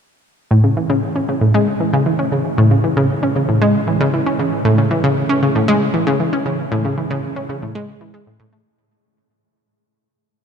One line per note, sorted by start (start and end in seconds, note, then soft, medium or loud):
0.51 0.63 A2 loud
0.64 0.76 C#3 medium
0.77 0.89 E3 medium
0.90 0.99 C#3 medium
1.16 1.21 C#4 medium
1.29 1.34 C#3 medium
1.41 1.50 A2 medium
1.54 1.67 G#3 loud
1.80 1.93 E3 medium
1.93 2.02 C#3 loud
2.06 2.15 E3 medium
2.19 2.24 C#4 medium
2.32 2.37 C#3 medium
2.58 2.70 A2 loud
2.71 2.83 C#3 medium
2.84 2.96 E3 medium
2.97 3.06 C#3 loud
3.23 3.28 C#4 medium
3.36 3.41 C#3 medium
3.49 3.58 A2 medium
3.62 3.74 G#3 medium
3.87 4.00 E3 medium
4.01 4.09 C#3 loud
4.14 4.22 E3 medium
4.26 4.32 C#4 medium
4.39 4.45 C#3 medium
4.65 4.77 A2 loud
4.78 4.90 C#3 medium
4.91 5.03 E3 medium
5.04 5.13 C#3 medium
5.29 5.35 C#4 medium
5.42 5.48 C#3 medium
5.55 5.64 A2 medium
5.68 5.80 G#3 loud
5.94 6.06 E3 medium
6.07 6.16 C#3 loud
6.20 6.29 E3 medium
6.33 6.38 C#4 medium
6.46 6.51 C#3 medium
6.72 6.84 A2 loud
6.85 6.97 C#3 medium
6.98 7.10 E3 medium
7.10 7.19 C#3 loud
7.36 7.42 C#4 medium
7.49 7.55 C#3 medium
7.62 7.71 A2 medium
7.75 7.87 G#3 loud
8.01 8.10 E3 medium
8.14 8.23 G#3 medium
8.27 8.36 A2 medium
8.40 8.45 A2 loud
8.52 8.62 A3 medium